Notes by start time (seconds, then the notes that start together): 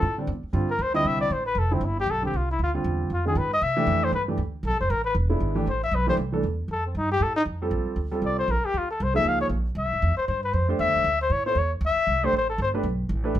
Already playing: A4
0.02 A2
0.17 D3 G3 C4 D4
0.27 E2
0.43 muted upright bass stroke
0.53 G2 D3 G3 C4 F4
0.71 A#4
0.79 D2 C5
0.94 D3 G3 C4 E4 D#5
1.05 C2 E5
1.21 D5
1.30 A1 C5
1.46 B4
1.55 F1 A4
1.71 D3 G3 C4 E4
1.81 G1
1.85 E4
2.00 G4
2.07 B1
2.11 A4
2.22 D3 G3 C4 G4
2.33 C2 F4
2.51 E4
2.59 D2
2.64 F4
2.74 D3 G3 C4 F4
2.84 E2
3.10 F2 F4
3.26 D#3 G#3 C#4 F4 G#4
3.35 G#2 B4
3.54 D#5
3.61 C3 E5
3.77 E3 A3 D4 G4
3.87 F2
4.04 C5
4.12 G2 B4
4.28 E3 A3 D4 G4
4.38 D2
4.63 B1 A4
4.72 A1
4.81 F1 C5
4.90 A1 A#4
5.05 B4
5.15 E1
5.29 G#3 B3 D4 E4
5.40 G#1
5.55 E3 A3 D4 G4
5.67 A1 C5
5.84 E5
5.92 B1 B4
6.07 E3 A3 D4 G4 C5
6.17 C2
6.32 E3 A3 D4 A4
6.43 E2
6.68 F2 A4
6.87 C4
6.95 G2 D#4
7.11 G4
7.20 A2 A4
7.36 D#4
7.45 F2
7.62 G3 C4 F4 A4
7.71 A#1
7.86 muted upright bass stroke
7.96 D2
8.11 G3 C4 F4 A4
8.22 C2 D5
8.39 C5
8.48 A#1 A#4
8.63 G4, muted upright bass stroke
8.74 D2
8.78 F4
8.91 A4
9.00 C2 C5
9.14 F3 A#3 D#4 G#4 E5
9.25 C#2 F5
9.41 C#5
9.49 A#1
9.75 C2 E5
9.85 B1
9.93 G1
10.02 E2
10.17 C5, muted upright bass stroke
10.28 G2 C5
10.44 B4
10.53 F2 C5
10.68 A3 D4 G4 C5
10.79 E2 E5
10.88 D2
10.96 A#1
11.04 D2
11.22 C5
11.30 A2 C#5
11.46 B3 E4 A4 C5 C#5
11.55 E2 C#5
11.81 D2
11.86 E5
11.96 muted upright bass stroke
12.07 C2
12.23 A3 D4 G4 C5
12.33 A1
12.37 C5
12.50 A4
12.58 G1 C5
12.74 A3 D4 G4 B4
12.83 B1
13.09 A1
13.24 A3 D4 G4 B4
13.35 G1